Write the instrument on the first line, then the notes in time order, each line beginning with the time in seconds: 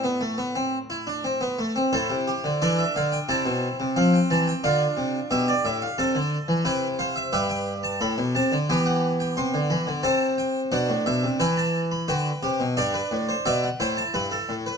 harpsichord
Already playing: A2 A4 A5
0.04 B3
0.21 A3
0.38 B3
0.55 C4
0.90 E4
1.07 D4
1.24 C4
1.41 B3
1.59 A3
1.76 C4
1.93 A2 E4 A4 C5
2.10 C3
2.27 G4
2.44 D3
2.62 E3 D4 A4 D5
2.79 E5
2.96 D3 F5
3.12 G5
3.29 C3 C4 E4 A5
3.46 B2
3.80 C3
3.96 F3 C4 F5
4.14 G5
4.30 E3 A5
4.48 G5
4.64 D3 D4 F4 F5
4.97 C3
5.31 B2 G4 E5
5.48 D5
5.65 A2 E5
5.82 F5
5.98 C3 A4 A5
6.15 D3
6.48 E3
6.65 C3 E4 B4 G5
6.99 C5 F5
7.16 E5
7.33 G2 G4 B4 E5
7.49 G5
7.83 A5
8.01 A2 A4 B5
8.18 B2
8.35 C3 A5
8.52 D3
8.69 E3 B3 G4 G5
8.86 F#5
9.20 G5
9.37 C3 C6
9.54 D3
9.70 E3 B5
9.87 D3
10.03 C3 C4 C5 A5
10.38 G5
10.72 B2 D4 F#5
10.89 A2
11.06 B2 E5
11.23 C3
11.40 E3 E4 B4 G5
11.57 A5
11.91 B5
12.08 D3 F#4 B4 G5
12.43 C3 G4
12.60 B2
12.77 G2 D4 G4 D5
12.94 B4
13.11 A2
13.29 C5
13.46 B2 B3 D5 E5
13.63 F#5
13.80 A2 E4 C5 G5
13.97 A5
14.14 G2 B4 B5
14.31 A4
14.49 A2
14.66 B4